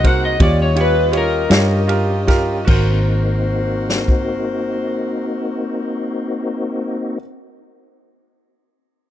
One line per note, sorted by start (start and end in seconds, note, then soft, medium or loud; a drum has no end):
0.00 0.36 C2 medium
0.00 0.38 A#3 medium
0.00 0.38 C4 medium
0.00 0.38 D#4 medium
0.00 0.38 F#4 medium
0.00 0.31 F#4 medium
0.00 0.38 G#4 medium
0.00 0.38 C5 medium
0.00 0.38 F#5 medium
0.04 0.31 A#4 medium
0.04 0.31 C5 medium
0.04 0.23 F#5 medium
0.04 kick medium
0.04 ride medium
0.25 0.41 D#5 medium
0.40 1.48 D#2 medium
0.40 2.66 G3 medium
0.40 2.66 C#4 medium
0.40 0.67 F4 medium
0.40 2.65 F4 medium
0.40 0.67 G4 medium
0.40 2.66 G4 medium
0.40 2.65 C#5 medium
0.40 0.68 C#5 medium
0.40 0.59 D5 medium
0.40 2.66 D#5 medium
0.40 kick loud
0.40 ride medium
0.62 0.78 C#5 medium
0.76 1.04 F4 medium
0.76 1.04 G4 medium
0.76 1.04 C#5 medium
0.76 ride medium
0.81 1.14 B4 medium
1.12 1.41 F4 medium
1.12 1.41 G4 medium
1.12 1.41 C#5 medium
1.12 ride medium
1.18 1.89 A#4 loud
1.49 2.64 G2 medium
1.49 1.79 F4 medium
1.49 1.79 G4 medium
1.49 1.79 C#5 medium
1.49 snare loud
1.49 ride medium
1.87 2.17 F4 medium
1.87 2.18 G4 medium
1.87 2.18 A#4 medium
1.87 ride medium
2.27 2.57 F4 medium
2.27 2.57 G4 medium
2.27 2.58 A#4 medium
2.27 kick medium
2.27 snare soft
2.27 ride medium
2.65 7.18 G#1 medium
2.65 7.19 A#3 medium
2.65 7.18 D#4 medium
2.65 7.15 F#4 medium
2.65 7.18 F#4 medium
2.65 7.17 A#4 medium
2.65 7.18 A#4 medium
2.65 7.18 C5 medium
2.65 kick loud
2.65 crash medium
2.69 7.19 C4 medium
2.69 7.20 C5 medium
3.89 snare medium
4.08 kick medium